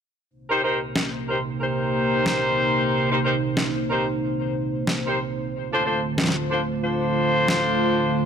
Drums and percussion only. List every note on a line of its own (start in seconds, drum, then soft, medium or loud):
0.96 snare loud
2.26 snare loud
3.57 snare loud
4.87 snare loud
6.18 snare loud
6.24 snare medium
6.29 snare medium
7.48 snare loud